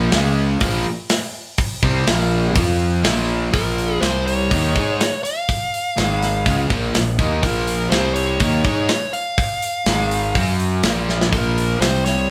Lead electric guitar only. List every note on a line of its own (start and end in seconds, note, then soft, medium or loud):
3.54 4.04 A#4 medium
4.01 4.26 C5 medium
4.26 5.23 C#5 medium
5.23 6.66 F5 medium
7.43 7.90 A#4 medium
7.90 8.14 C5 medium
8.14 9.16 C#5 medium
9.13 10.55 F5 medium
11.33 11.78 A#4 medium
11.81 12.05 C5 medium
12.05 12.30 C#5 medium